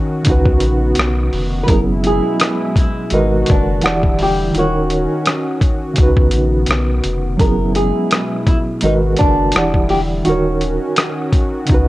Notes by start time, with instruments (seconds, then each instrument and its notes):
Already playing: reed electric piano D#3 D#4 F#4 A#4 C#5, analog synth pad D#3 C#4 F#4, nylon-string guitar F#4
0.23 reed electric piano C#3 C#4, analog synth pad B3, kick, closed hi-hat
0.27 sub bass C#2, reed electric piano D#4 F#4
0.32 reed electric piano B4
0.46 kick
0.60 sub bass A#1, closed hi-hat
0.95 sub bass B1, closed hi-hat
0.99 cross-stick
1.33 sub bass F1, open hi-hat
1.63 reed electric piano F#3, nylon-string guitar B4
1.68 sub bass F#1, analog synth pad B2 G#3 E4, reed electric piano C#4 E4, nylon-string guitar A#4, kick, closed hi-hat
1.72 reed electric piano B3 G#4
2.04 nylon-string guitar G#4, closed hi-hat
2.40 cross-stick, closed hi-hat
2.76 nylon-string guitar E4, kick, closed hi-hat
3.10 sub bass G#1, analog synth pad B2 F#4, reed electric piano D#3 G#3 F#4 A#4, nylon-string guitar D#4, closed hi-hat
3.15 reed electric piano B4
3.46 sub bass F#1, nylon-string guitar D4, kick, closed hi-hat
3.81 sub bass E1, analog synth pad D3 G3 E4, reed electric piano E3 E4 G4 F#5, closed hi-hat
3.86 reed electric piano D5, cross-stick
4.03 kick
4.19 nylon-string guitar G4, open hi-hat
4.51 sub bass D#1, reed electric piano D#3 D#4, analog synth pad D#3 F#4, closed hi-hat
4.55 analog synth pad C#4, reed electric piano F#4 A#4, nylon-string guitar F#4
4.60 reed electric piano C#5
4.90 closed hi-hat
5.26 cross-stick, closed hi-hat
5.61 kick, closed hi-hat
5.94 reed electric piano C#3 C#4, analog synth pad D#3 B3, closed hi-hat
5.98 sub bass C#2, reed electric piano D#4 F#4, kick
6.03 reed electric piano B4
6.17 kick
6.31 sub bass A#1, closed hi-hat
6.66 sub bass B1, closed hi-hat
6.71 cross-stick
7.04 sub bass F1, closed hi-hat
7.37 sub bass F#1, analog synth pad B2 G#3 E4, reed electric piano F#3 C#4, nylon-string guitar A#4, kick, closed hi-hat
7.41 reed electric piano E4 G#4
7.45 reed electric piano B3
7.75 nylon-string guitar G#4, closed hi-hat
8.11 cross-stick, closed hi-hat
8.47 nylon-string guitar E4, kick, closed hi-hat
8.81 sub bass G#1, reed electric piano D#3 G#3 F#4, analog synth pad G#3 F#4, nylon-string guitar D#4, closed hi-hat
8.85 reed electric piano A#4 B4
9.17 nylon-string guitar D4, closed hi-hat
9.21 sub bass F#1, kick
9.52 sub bass E1, analog synth pad D3 G3 E4, reed electric piano E3 E4, closed hi-hat
9.56 reed electric piano G4 D5 F#5, cross-stick
9.74 kick
9.89 nylon-string guitar G4, open hi-hat
10.23 sub bass D#1, reed electric piano D#3 D#4, analog synth pad D#3 C#4 F#4, nylon-string guitar F#4, closed hi-hat
10.28 reed electric piano F#4 A#4
10.32 reed electric piano C#5
10.61 closed hi-hat
10.96 cross-stick, closed hi-hat
11.32 kick, closed hi-hat
11.66 sub bass C#2, reed electric piano C#3 C#4 D#4, analog synth pad B3, kick, closed hi-hat
11.72 reed electric piano F#4 B4